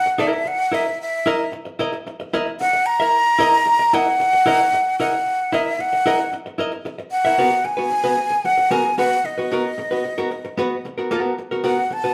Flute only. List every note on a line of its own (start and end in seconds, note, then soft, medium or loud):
0.00 0.21 F#5 loud
0.20 0.49 E5 medium
0.47 0.76 F#5 loud
0.74 1.00 E5 medium
1.01 1.50 E5 medium
2.60 2.87 F#5 loud
2.86 3.95 A#5 loud
3.94 4.99 F#5 loud
5.00 5.55 F#5 medium
5.54 5.82 E5 medium
5.80 6.33 F#5 medium
7.11 7.66 F#5 loud
7.65 8.47 G#5 loud
8.45 8.73 F#5 medium
8.71 8.98 G#5 medium
8.98 9.27 F#5 medium
9.25 10.85 D#5 medium
11.66 11.94 F#5 medium
11.93 12.14 A5 loud